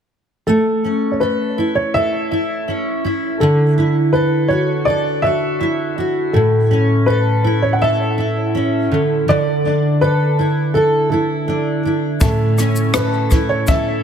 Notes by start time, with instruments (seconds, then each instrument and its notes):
0.47 steel-string acoustic guitar A3, upright piano A4
0.84 steel-string acoustic guitar C#4
1.11 upright piano C#5
1.20 steel-string acoustic guitar A4, upright piano B4
1.58 steel-string acoustic guitar E4
1.75 upright piano C#5
1.94 steel-string acoustic guitar A4, upright piano E5
2.31 steel-string acoustic guitar E4
2.68 steel-string acoustic guitar C#4
3.04 steel-string acoustic guitar E4
3.40 steel-string acoustic guitar D3, upright piano A4
3.78 steel-string acoustic guitar E4
4.13 steel-string acoustic guitar A4, upright piano B4
4.48 steel-string acoustic guitar F#4, upright piano C#5
4.85 steel-string acoustic guitar A4, upright piano D5
5.22 steel-string acoustic guitar F#4, upright piano E5
5.60 steel-string acoustic guitar E4
5.98 steel-string acoustic guitar F#4
6.33 steel-string acoustic guitar A2, upright piano A4
6.71 steel-string acoustic guitar C#4
7.06 steel-string acoustic guitar A4, upright piano B4
7.44 steel-string acoustic guitar E4
7.62 upright piano C#5
7.73 upright piano F#5
7.81 steel-string acoustic guitar A4, upright piano E5
8.18 steel-string acoustic guitar E4
8.55 steel-string acoustic guitar C#4
8.91 steel-string acoustic guitar D3
9.28 steel-string acoustic guitar D3, upright piano D5
9.65 steel-string acoustic guitar D4
10.01 steel-string acoustic guitar A4, upright piano B4
10.39 steel-string acoustic guitar E4
10.74 upright piano A4, steel-string acoustic guitar A4
11.10 steel-string acoustic guitar E4, upright piano A4
11.48 steel-string acoustic guitar D4
11.85 steel-string acoustic guitar E4
12.20 steel-string acoustic guitar A2, upright piano C#4 E4 A4 E5, kick, shaker
12.58 steel-string acoustic guitar C#4, cross-stick, shaker
12.76 shaker
12.94 steel-string acoustic guitar A4, upright piano B4, cross-stick, shaker
13.31 steel-string acoustic guitar E4, kick, shaker
13.49 upright piano C#5
13.67 upright piano C#4 E4 A4 E5, steel-string acoustic guitar A4, kick, shaker